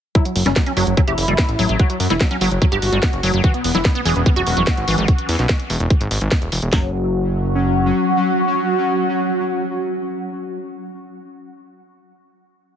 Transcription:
0.15 0.24 F#3 medium
0.15 0.21 E4 loud
0.15 kick loud
0.15 closed hi-hat medium
0.25 0.31 F#3 medium
0.25 closed hi-hat medium
0.36 0.43 F#1 medium
0.36 0.41 F#3 medium
0.36 open hi-hat loud
0.46 0.53 F#1 medium
0.46 0.49 G3 loud
0.46 0.52 C#4 medium
0.46 snare soft
0.46 closed hi-hat medium
0.56 0.62 F#3 medium
0.56 kick loud
0.56 snare loud
0.56 closed hi-hat medium
0.66 0.72 F#3 medium
0.66 0.72 C#4 loud
0.66 closed hi-hat medium
0.77 0.84 F#1 medium
0.77 0.86 F#3 loud
0.77 0.83 F#4 loud
0.77 open hi-hat loud
0.87 0.94 F#1 medium
0.87 0.93 F#3 medium
0.87 closed hi-hat medium
0.97 1.03 F#3 medium
0.97 1.01 F#3 loud
0.97 kick loud
0.97 closed hi-hat medium
1.08 1.15 F#1 medium
1.08 1.71 E4 loud
1.08 1.13 G4 loud
1.08 closed hi-hat medium
1.18 1.25 F#1 medium
1.18 open hi-hat loud
1.28 1.35 F#1 medium
1.28 1.34 G3 medium
1.28 closed hi-hat medium
1.38 kick loud
1.38 snare loud
1.38 closed hi-hat medium
1.49 1.56 A1 medium
1.49 closed hi-hat medium
1.59 1.66 A1 medium
1.59 1.68 F#3 loud
1.59 open hi-hat loud
1.69 1.76 A1 medium
1.69 1.78 F#3 medium
1.69 closed hi-hat medium
1.79 1.88 F#3 medium
1.79 1.85 F#4 loud
1.79 kick loud
1.79 closed hi-hat medium
1.90 1.96 F#3 medium
1.90 closed hi-hat medium
2.00 2.07 F#2 medium
2.00 2.06 F#3 medium
2.00 open hi-hat loud
2.10 2.18 E1 medium
2.10 2.14 G3 loud
2.10 2.16 E4 loud
2.10 snare soft
2.10 closed hi-hat medium
2.21 2.26 F#3 medium
2.21 kick loud
2.21 snare loud
2.21 closed hi-hat medium
2.31 2.37 F#3 medium
2.31 2.37 C#4 loud
2.31 closed hi-hat medium
2.41 2.48 F#1 medium
2.41 2.50 F#3 loud
2.41 2.47 F#4 loud
2.41 open hi-hat loud
2.51 2.59 F#1 medium
2.51 2.57 F#3 medium
2.51 closed hi-hat medium
2.62 2.67 F#3 medium
2.62 2.65 F#3 loud
2.62 kick loud
2.62 closed hi-hat medium
2.72 2.79 G1 medium
2.72 3.36 F#4 loud
2.72 2.78 G4 loud
2.72 closed hi-hat medium
2.82 2.90 G1 medium
2.82 open hi-hat loud
2.92 3.00 G1 medium
2.92 2.98 G3 medium
2.92 closed hi-hat medium
3.03 kick loud
3.03 snare loud
3.03 closed hi-hat medium
3.13 3.20 F#1 medium
3.13 closed hi-hat medium
3.23 3.31 F#1 loud
3.23 3.32 F#3 loud
3.23 open hi-hat loud
3.34 3.41 F#1 medium
3.34 3.42 F#3 medium
3.34 closed hi-hat medium
3.44 3.53 E3 medium
3.44 5.12 F#3 medium
3.44 5.12 C#4 medium
3.44 3.50 F#4 loud
3.44 kick loud
3.44 closed hi-hat medium
3.54 3.60 B3 medium
3.54 closed hi-hat medium
3.64 3.72 E1 medium
3.64 3.70 B3 medium
3.64 open hi-hat loud
3.75 3.82 E1 medium
3.75 3.78 F#3 loud
3.75 3.80 E4 loud
3.75 snare soft
3.75 closed hi-hat medium
3.85 3.91 B3 medium
3.85 kick loud
3.85 snare loud
3.85 closed hi-hat medium
3.95 4.01 B3 loud
3.95 4.01 B3 medium
3.95 closed hi-hat medium
4.05 4.13 E1 loud
4.05 4.14 E3 loud
4.05 4.11 G#4 loud
4.05 open hi-hat loud
4.16 4.23 E1 medium
4.16 4.22 B3 medium
4.16 closed hi-hat medium
4.26 4.30 E3 loud
4.26 4.32 B3 medium
4.26 kick loud
4.26 closed hi-hat medium
4.36 4.44 E1 medium
4.36 5.00 F#4 loud
4.36 4.42 F#4 loud
4.36 closed hi-hat medium
4.47 4.54 E1 medium
4.47 open hi-hat loud
4.57 4.64 E1 medium
4.57 4.63 F#3 medium
4.57 closed hi-hat medium
4.67 kick loud
4.67 snare loud
4.67 closed hi-hat medium
4.77 4.85 G#1 medium
4.77 closed hi-hat medium
4.88 4.95 G#1 medium
4.88 4.97 E3 loud
4.88 open hi-hat loud
4.98 5.05 G#1 medium
4.98 5.07 E3 medium
4.98 closed hi-hat medium
5.08 kick loud
5.08 closed hi-hat medium
5.18 closed hi-hat medium
5.29 5.36 E2 medium
5.29 open hi-hat loud
5.39 5.46 B1 medium
5.39 snare soft
5.39 closed hi-hat medium
5.49 kick loud
5.49 snare loud
5.49 closed hi-hat medium
5.60 closed hi-hat medium
5.70 5.77 E1 loud
5.70 open hi-hat loud
5.80 5.87 E1 medium
5.80 closed hi-hat medium
5.90 kick loud
5.90 closed hi-hat medium
6.01 6.08 G#1 medium
6.01 closed hi-hat medium
6.11 6.18 G#1 medium
6.11 open hi-hat loud
6.21 6.29 G#1 medium
6.21 closed hi-hat medium
6.32 kick loud
6.32 snare loud
6.32 closed hi-hat medium
6.42 6.49 E1 medium
6.42 closed hi-hat medium
6.52 6.59 E1 medium
6.52 open hi-hat loud
6.62 6.70 E1 medium
6.62 closed hi-hat medium
6.73 7.92 F#1 loud
6.73 6.92 F#3 medium
6.73 10.82 F#3 medium
6.73 10.81 C#4 medium
6.73 10.77 F#4 loud
6.73 kick loud
6.73 snare loud

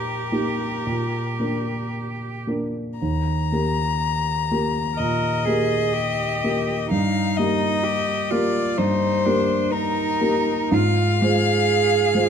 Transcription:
0.00 0.87 A#2 soft
0.00 0.28 A#3 soft
0.00 0.28 D#4 soft
0.00 0.28 G4 soft
0.00 2.42 G4 soft
0.00 1.91 A#4 soft
0.32 0.82 A#3 soft
0.32 0.82 D#4 soft
0.32 0.83 G4 soft
0.87 1.38 A#2 soft
1.40 2.42 A#3 soft
1.40 2.43 D4 soft
1.40 2.43 A#4 soft
2.47 2.96 A#3 soft
2.47 2.97 D4 soft
2.47 2.97 A#4 soft
2.99 3.50 D#2 soft
2.99 4.99 A#5 medium
3.52 4.46 A#3 soft
3.52 4.47 G4 soft
3.52 4.47 A#4 soft
4.51 4.95 A#3 soft
4.51 4.95 G4 soft
4.51 4.95 A#4 soft
4.96 5.46 A#2 soft
4.96 5.46 A#4 medium
4.96 6.91 D#5 medium
5.45 6.40 A#3 soft
5.45 6.40 G4 soft
5.45 5.95 G#4 soft
5.45 6.40 A#4 soft
5.93 6.89 G4 soft
6.44 6.88 A#3 soft
6.44 6.88 G4 soft
6.44 6.88 A#4 soft
6.90 7.37 G2 soft
6.90 7.85 D#4 medium
6.90 7.39 F5 medium
7.37 8.28 A#3 soft
7.37 8.28 G4 soft
7.37 8.28 A#4 soft
7.37 8.32 D#5 medium
7.84 8.32 G4 medium
8.31 8.75 A#3 soft
8.31 8.79 F4 soft
8.31 8.75 G4 soft
8.31 8.75 A#4 soft
8.31 8.80 D5 medium
8.78 9.24 G2 soft
8.78 9.27 D#4 medium
8.78 9.74 C5 medium
9.26 10.18 A#3 soft
9.26 9.72 D4 soft
9.26 10.18 G4 soft
9.26 10.18 A#4 soft
9.71 10.75 D#4 medium
9.71 10.73 A#4 medium
10.21 10.69 A#3 soft
10.21 10.69 G4 soft
10.21 10.69 A#4 soft
10.72 11.20 G#2 medium
10.72 11.25 F4 medium
10.72 12.29 F5 medium
11.22 12.12 G#3 soft
11.22 12.12 F4 soft
11.22 12.29 G#4 medium
11.22 12.12 C5 soft
12.15 12.29 G#3 soft
12.15 12.29 F4 soft
12.15 12.29 C5 soft

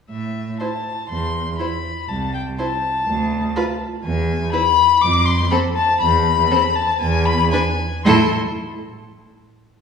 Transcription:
0.10 0.52 A2 soft
0.10 0.57 E5 soft
0.60 0.68 E4 soft
0.60 0.68 C5 soft
0.60 1.09 A5 medium
1.10 1.51 E2 soft
1.10 1.58 C6 medium
1.59 1.67 E4 soft
1.59 1.68 C5 soft
1.59 2.10 B5 medium
2.09 2.50 C2 medium
2.09 2.33 A5 medium
2.34 2.42 G5 medium
2.58 2.67 E4 soft
2.58 2.67 C5 soft
2.58 3.78 A5 medium
3.07 3.48 D2 medium
3.56 3.64 F4 medium
3.56 3.64 B4 medium
4.04 4.45 E2 medium
4.04 4.49 G#5 medium
4.52 4.61 E4 medium
4.52 4.61 B4 medium
4.52 5.03 B5 loud
5.02 5.43 F2 medium
5.02 5.27 D6 loud
5.26 5.50 C6 medium
5.51 5.59 C4 medium
5.51 5.59 A4 medium
5.51 5.59 B5 medium
5.75 6.00 A5 loud
6.00 6.43 E2 medium
6.00 6.77 B5 medium
6.51 6.59 C4 medium
6.51 6.59 A4 medium
6.76 7.00 A5 medium
7.01 7.44 E2 medium
7.01 7.27 G#5 medium
7.26 7.50 B5 loud
7.51 7.60 D4 medium
7.51 7.61 B4 medium
7.51 8.03 G#5 medium
8.04 8.34 A2 medium
8.04 8.34 E4 medium
8.04 8.35 A4 medium
8.04 8.33 C6 medium

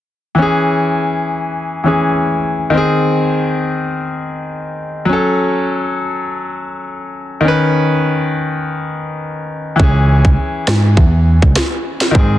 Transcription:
0.35 1.81 E3 medium
0.35 1.83 C#4 medium
0.42 1.85 G#4 medium
1.84 2.73 E3 medium
1.84 2.74 C#4 medium
1.84 2.75 G#4 medium
2.70 5.03 D#3 medium
2.70 5.05 C4 medium
2.77 5.07 G#4 medium
5.05 7.38 F#3 medium
5.05 7.40 C#4 medium
5.13 7.42 A4 medium
7.41 9.74 D#3 medium
7.41 9.76 C#4 medium
7.48 9.78 B4 medium
9.76 10.34 C#2 loud
9.76 12.09 E3 medium
9.76 12.11 C#4 medium
9.76 kick loud
9.83 12.13 G#4 medium
10.25 kick medium
10.67 10.95 G#2 medium
10.67 cross-stick loud
10.67 snare loud
10.97 11.38 E2 loud
10.97 kick medium
11.42 11.55 C#2 medium
11.42 kick loud
11.56 cross-stick medium
11.56 snare loud
12.01 snare medium
12.11 12.39 G#2 loud
12.11 12.39 D#3 medium
12.11 12.39 C4 medium
12.11 kick loud
12.19 12.39 G#4 medium

